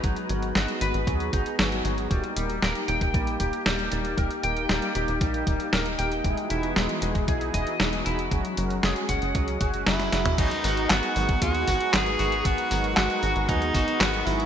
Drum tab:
CC |----------------|----------------|----------------|----------------|
HH |xxxxxxxxxxxxxxxx|xxxxxxxxxxxxxxxx|xxxxxxxxxxxxxxxx|xxxxxxxxxxxxxxxx|
CP |----------------|----------------|----------------|----------------|
SD |----o-------o---|----o-------o---|----o-------o---|----o-------o---|
T2 |----------------|----------------|----------------|----------------|
BD |o-------o-o-----|o------oo-o-----|o-------o-o-----|o------oo-o-----|

CC |----------------|x---------------|----------------|
HH |xxxxxxxxxxxxxxxx|xxoxxxoxxxoxxxox|xxoxxxoxxxoxxxox|
CP |----------------|----x-------x---|----x-------x---|
SD |----o-------ooo-|----o-------o---|----o-------o---|
T2 |---------------o|----------------|----------------|
BD |o-----o-o-o-----|o------oo-o-----|o-------o-o-----|